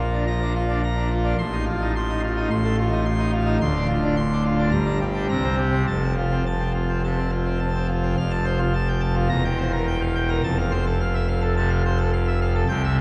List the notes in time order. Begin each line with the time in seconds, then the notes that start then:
Already playing: A#1 A#2
0.00 F4
0.13 D4
0.27 F3 A#5
0.42 D4
0.55 F4
0.69 D4
0.83 A#5
0.97 D4
1.10 F4
1.24 D4
1.38 A1 A2 C6
1.53 D#4
1.66 F4
1.82 D#4
1.96 C6
2.10 D#4
2.24 F4
2.37 D#4
2.50 A1 A2 C6
2.64 A3
2.78 F4
2.92 D#4
3.05 C6
3.19 D#4
3.32 F4
3.46 D#4
3.61 D1 D2 C6
3.76 D4
3.88 F4
4.03 D4
4.17 C6
4.33 D4
4.45 F4
4.59 D4
4.72 G1 G2 A#5
4.86 D4
5.01 G4
5.14 D4
5.29 C2 C3 A#5
5.44 C4
5.58 G4
5.73 C4
5.87 F1 F2 A5
6.02 C4
6.17 F4
6.31 C4
6.46 A5
6.60 C4
6.74 F4
6.89 C4
7.04 C3 A5
7.18 C4
7.32 F4
7.46 C4
7.60 A5
7.75 C4
7.88 F4
8.03 C4
8.18 F1 F2 F5
8.31 A5
8.45 C5
8.59 F4
8.74 A5
8.88 G5
9.01 A5
9.15 F4
9.29 E1 E2 A#5
9.45 G5
9.58 C5
9.73 A#4
9.87 G5
10.02 F5
10.15 G5
10.29 A#4
10.43 F1 F2 A5
10.59 F5
10.71 C5
10.86 A4
11.01 F5
11.14 E5
11.28 F5
11.42 A4
11.56 C3 A5
11.70 F5
11.85 C5
11.98 A4
12.13 F5
12.27 E5
12.42 F5
12.55 A4
12.69 C2 C3 G5
12.84 E5